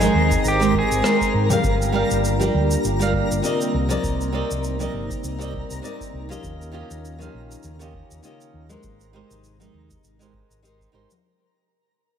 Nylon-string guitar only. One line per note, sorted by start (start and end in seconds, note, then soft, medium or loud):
0.00 0.56 G#3 medium
0.00 0.57 D#4 medium
0.00 0.57 A#4 medium
0.00 0.57 D#5 medium
0.00 0.57 G5 medium
0.60 1.00 G#3 medium
0.60 1.01 D#4 medium
0.60 1.01 G4 medium
0.60 1.01 A#4 medium
0.60 1.02 C5 medium
1.02 1.46 G#3 medium
1.02 1.46 D#4 medium
1.02 1.47 A#4 medium
1.02 1.47 C5 medium
1.02 1.47 G5 medium
1.50 1.90 G3 medium
1.50 1.91 G4 medium
1.50 1.91 A#4 medium
1.50 1.91 D5 medium
1.50 1.92 F5 medium
1.92 2.36 G3 medium
1.92 2.36 G4 medium
1.92 2.37 A#4 medium
1.92 2.37 D5 medium
1.92 2.37 F5 loud
2.40 2.96 G3 medium
2.40 2.96 G4 medium
2.40 2.97 A#4 medium
2.40 2.97 D5 medium
2.40 2.98 G5 medium
2.99 3.40 G3 medium
2.99 3.40 G4 medium
2.99 3.41 A#4 medium
2.99 3.41 D5 medium
2.99 3.41 F5 medium
3.42 3.86 C3 medium
3.42 3.86 C4 medium
3.42 3.87 A#4 medium
3.42 3.87 D5 medium
3.42 3.87 D#5 medium
3.89 4.30 C3 medium
3.89 4.30 C4 medium
3.89 4.31 A#4 medium
3.89 4.31 D5 medium
3.89 4.31 D#5 medium
4.33 4.76 C3 medium
4.33 4.76 C4 medium
4.33 4.77 A#4 medium
4.33 4.77 D5 medium
4.33 4.77 D#5 loud
4.79 5.36 C3 medium
4.79 5.36 C4 medium
4.79 5.36 A#4 medium
4.79 5.37 D5 medium
4.79 5.37 D#5 medium
5.39 5.80 C3 medium
5.39 5.80 C4 medium
5.39 5.80 A#4 medium
5.39 5.81 D5 medium
5.39 5.81 D#5 medium
5.82 6.26 C3 medium
5.82 6.26 C4 medium
5.82 6.26 A#4 medium
5.82 6.27 D5 medium
5.82 6.27 D#5 medium
6.29 6.70 D#3 medium
6.29 6.70 C#4 medium
6.29 6.71 F4 medium
6.29 6.71 G4 medium
6.29 6.71 D#5 medium
6.72 7.16 D#3 medium
6.72 7.16 C#4 medium
6.72 7.16 F4 medium
6.72 7.17 G4 medium
6.72 7.17 D#5 loud
7.19 7.76 D#3 medium
7.19 7.76 C#4 medium
7.19 7.76 F4 medium
7.19 7.77 G4 medium
7.19 7.77 F5 medium
7.79 8.20 D#3 medium
7.79 8.20 C#4 medium
7.79 8.21 F4 medium
7.79 8.21 G4 medium
7.79 8.21 D#5 medium
8.23 8.66 D#3 medium
8.23 8.66 C#4 medium
8.23 8.67 F4 medium
8.23 8.67 G4 medium
8.23 8.67 D#5 medium
8.69 9.10 G#3 medium
8.69 9.10 D#4 medium
8.69 9.11 G4 medium
8.69 9.11 A#4 medium
8.69 9.12 C5 medium
9.13 9.56 G#3 medium
9.13 9.57 D#4 medium
9.13 9.57 G4 medium
9.13 9.57 A#4 medium
9.13 9.58 C5 loud
9.60 10.16 G#3 medium
9.60 10.17 D#4 medium
9.60 10.17 G4 medium
9.60 10.17 A#4 medium
9.60 10.18 D#5 medium
10.19 10.60 G#3 medium
10.19 10.60 D#4 medium
10.19 10.61 G4 medium
10.19 10.61 A#4 medium
10.19 10.61 C5 medium
10.63 10.90 G#3 medium
10.63 10.90 D#4 medium
10.63 10.91 G4 medium
10.63 10.91 A#4 medium
10.63 10.91 C5 medium
10.92 11.09 G#3 medium
10.92 11.09 D#4 medium
10.92 11.10 G4 medium
10.92 11.10 A#4 medium
10.92 11.10 C5 medium